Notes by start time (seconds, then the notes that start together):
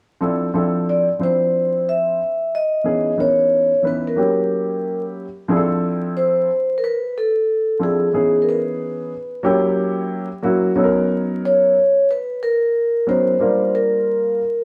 0.20 F3 C4 D4 E4 A4
0.54 F3 C4 D4 E4 A4
0.89 D5
1.19 F3 C4 D4 E4 C5
1.23 C5
1.89 E5
2.55 D#5
2.84 E3 B3 C#4 D#4 G#4
3.17 E3 B3 C#4 D#4 A#4 C#5
3.82 E3 B3 C#4 D#4 B4
3.87 B4
4.07 A#4
4.16 F#3 A#3 C#4 E4 G4
5.48 F3 C4 D4 E4 G#4
5.57 A4
6.17 C5
6.78 A#4
6.84 B4
7.18 A4
7.79 F3 C4 D4 E4 A4
7.83 G#4
8.13 E3 B3 C#4 D#4 G#4
8.42 A#4
8.49 B4
9.43 F#3 A#3 C#4 E4 G4
10.43 F#3 A#3 C#4 E4 F#4
10.75 F#3 B3 C#4 D#4 A4
10.83 A#4
11.45 C#5
12.11 B4
12.43 A#4
13.07 F#3 B3 C#4 D#4 A#4 C5
13.39 G3 A#3 D4 F4 A#4
13.75 A#4